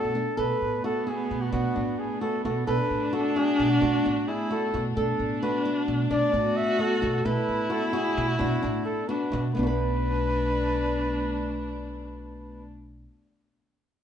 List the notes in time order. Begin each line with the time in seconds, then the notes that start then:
Already playing: B2 A3 D4 F#4 A4
0.04 B2
0.15 D4
0.37 B2 A3 B3 D4 A4 B4
0.62 A2
0.84 F#4 A4
1.07 F#4 G#4
1.31 B2
1.42 F#4
1.52 B2 D4 F#4
1.76 A2 D4
1.99 G#4
2.21 F#4 A4
2.45 B2 F#4 A4
2.67 B2 D4 A4 B4
2.91 A2
3.13 F#4 A4
3.36 F#4 G#4
3.59 B2
3.70 F#4
3.81 B2 D4 F#4
4.05 A2 D4
4.28 E4 G#4
4.51 F#4 A4
4.74 B2 F#4
4.97 B2 D4 A4
5.19 A2
5.43 F#4 B4
5.65 F#4
5.88 B2
6.10 B2 D4 D5
6.33 A2 D4 F#4
6.57 E5
6.79 F#4 A4
7.02 B2 F#4
7.18 F#4
7.25 B2 E4 A4 B4
7.49 A2
7.70 F#4 A4
7.85 A4
7.93 F#4 G#4
8.17 B2
8.28 F#4
8.39 B2 D4 F#4
8.63 A2 D4
8.85 A4
9.08 D4 F#4 B4
9.32 B2 F#4
9.54 B1 B2 A3 B3 D4 B4
9.59 D4
9.63 F#4 B4